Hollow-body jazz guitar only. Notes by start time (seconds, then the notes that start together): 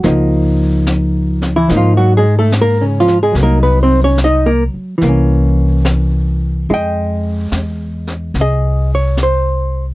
Already playing: F#4
0.04 F3 A#3 D#4
1.56 E3 E4
1.68 F3 A#3 D#4
1.77 F3 F4
1.97 F#3 F#4
2.17 G#3 G#4
2.39 A3 A4
2.62 A#3 A#4
2.81 C#3 C#4
3.00 F3 F4
3.23 G#3 G#4
3.32 F#3
3.38 A#3
3.43 A#3 D#4 A#4
3.63 B3 B4
3.83 C4 C5
4.04 C#4 C#5
4.24 D#4 D#5
4.46 A#3 A#4
4.98 E3
5.04 A#3
5.09 C#4
6.70 G#3 D#4 D#5 G5
8.41 G#4 D#5
8.95 C#5
9.23 C5